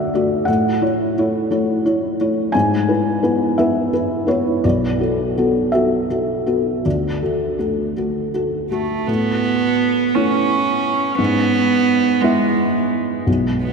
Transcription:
Already playing: felt piano D2 A3 F#4 D5 E5 F#5
0.14 felt piano A3 F#4 D5
0.45 felt piano A2 F#5
0.82 felt piano E4 C#5
1.18 felt piano A3 E4 C#5
1.51 felt piano A3 E4 C#5
1.86 felt piano E4 C#5
2.21 felt piano A3 E4 C#5
2.52 felt piano G#2 G#5
2.89 felt piano E4 B4
3.23 felt piano B3 E4 B4
3.58 felt piano B3 E4 B4 E5
3.93 felt piano E4 B4
4.27 felt piano B3 E4 B4 C#5
4.64 felt piano B1 D5
5.00 felt piano F#4 A4
5.38 felt piano B3 F#4 A4
5.72 felt piano B3 F#4 A4 E5
6.10 felt piano F#4 A4
6.46 felt piano B3 F#4 A4
6.85 felt piano D2 D5
7.23 felt piano F#4 A4
7.59 felt piano A3 F#4 A4
7.97 felt piano A3 F#4 A4
8.34 felt piano F#4 A4
8.71 cello A3, felt piano A3 F#4 A4
9.07 felt piano A2, cello B3
10.15 felt piano A3 E4 C#5, cello C#4
11.19 felt piano G#2, cello B3
12.21 cello G#3, felt piano B3 E4 E5
13.27 felt piano B1
13.63 cello B3

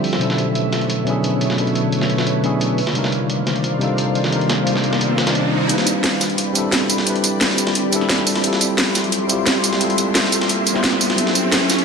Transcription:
Already playing: tine electric piano D3 G3 C4 E4 F4 G4 A4 C5, ambient pad D3 F3 G4 C5 E5
0.04 open hi-hat
0.13 snare
0.18 tine electric piano B2 F#3 C#4 D4, ambient pad A3 B4 C#5, closed hi-hat
0.23 tine electric piano E4 A4
0.30 snare
0.38 closed hi-hat
0.55 closed hi-hat
0.73 snare, closed hi-hat
0.81 closed hi-hat
0.90 closed hi-hat
1.04 tine electric piano B2 F#3 C#4 D4, closed hi-hat
1.09 tine electric piano E4 G#4
1.24 closed hi-hat
1.41 closed hi-hat
1.50 snare
1.55 tine electric piano B2 F#3 C#4 D4, closed hi-hat
1.60 tine electric piano E4 A4
1.67 closed hi-hat
1.75 closed hi-hat
1.92 closed hi-hat
2.01 snare
2.10 closed hi-hat
2.18 snare
2.27 closed hi-hat
2.43 tine electric piano B2 F#3 C#4 D4 E4 G#4, closed hi-hat
2.61 closed hi-hat
2.78 ambient pad D#3 A#3 C5 D5 F5, open hi-hat
2.87 snare
2.92 tine electric piano C3 G3 D4 D#4, closed hi-hat, riser
2.97 tine electric piano F4 A#4
3.04 snare
3.12 closed hi-hat
3.30 closed hi-hat
3.47 snare, closed hi-hat
3.56 closed hi-hat
3.64 closed hi-hat
3.78 tine electric piano C3 G3 D4 D#4, closed hi-hat
3.83 tine electric piano F4 A4
3.98 closed hi-hat
4.15 closed hi-hat
4.24 snare
4.30 tine electric piano C3 G3 D4 D#4, closed hi-hat
4.35 tine electric piano F4 A#4
4.41 closed hi-hat
4.50 snare, closed hi-hat
4.67 closed hi-hat
4.76 snare
4.84 closed hi-hat
4.93 snare
5.01 closed hi-hat
5.18 snare, closed hi-hat
5.24 tine electric piano C3 G3 D4 D#4, snare, closed hi-hat
5.29 tine electric piano F4 D5
5.35 closed hi-hat
5.67 sub bass A1, tine electric piano G3 C4 D4, ambient pad C4 G4 D5 B5, closed hi-hat, riser
5.71 tine electric piano E4 B4
5.78 snare
5.87 closed hi-hat, tambourine
6.04 snare, closed hi-hat
6.21 sub bass C2, snare, closed hi-hat, tambourine
6.30 closed hi-hat
6.38 closed hi-hat
6.52 sub bass B1, tine electric piano G3 C4 D4, closed hi-hat, tambourine
6.57 tine electric piano E4 A4
6.72 snare, closed hi-hat
6.90 sub bass A1, closed hi-hat, tambourine
6.98 snare
7.04 tine electric piano G3 C4 D4, closed hi-hat
7.08 tine electric piano E4 B4
7.16 closed hi-hat
7.24 closed hi-hat, tambourine
7.41 snare, closed hi-hat
7.50 snare
7.58 sub bass C2, closed hi-hat, tambourine
7.67 snare
7.75 closed hi-hat
7.90 sub bass C2, tine electric piano G3 C4 D4, closed hi-hat, tambourine
7.94 tine electric piano E4 A4
8.01 snare
8.09 snare, closed hi-hat
8.18 snare
8.27 closed hi-hat, open hi-hat, tambourine
8.36 snare
8.41 sub bass D2, tine electric piano G3 C4 E4, ambient pad E5 C6, closed hi-hat
8.46 tine electric piano F4 A4
8.53 snare
8.61 closed hi-hat, tambourine
8.78 snare, closed hi-hat
8.95 sub bass F2, snare, closed hi-hat, tambourine
9.04 closed hi-hat
9.12 closed hi-hat
9.27 sub bass E2, tine electric piano G3 C4 E4, closed hi-hat, tambourine
9.31 tine electric piano F4 G4
9.46 snare, closed hi-hat
9.64 sub bass D2, closed hi-hat, tambourine
9.73 snare
9.78 tine electric piano G3 C4 E4, closed hi-hat
9.83 tine electric piano F4 A4
9.90 closed hi-hat
9.98 closed hi-hat, tambourine
10.15 snare, closed hi-hat
10.24 snare
10.32 sub bass F2, closed hi-hat, tambourine
10.42 snare
10.49 closed hi-hat
10.67 closed hi-hat, tambourine
10.73 tine electric piano G3 C4 E4, snare
10.77 tine electric piano F4 C5
10.84 snare, closed hi-hat
10.93 snare
11.01 sub bass G2, closed hi-hat, open hi-hat, tambourine
11.10 snare
11.16 sub bass B1, tine electric piano F#3 C#4 D4, ambient pad A4 C#6, closed hi-hat
11.20 tine electric piano E4 A4
11.27 snare
11.35 closed hi-hat, tambourine
11.52 snare, closed hi-hat
11.70 sub bass D2, snare, closed hi-hat, tambourine
11.78 closed hi-hat

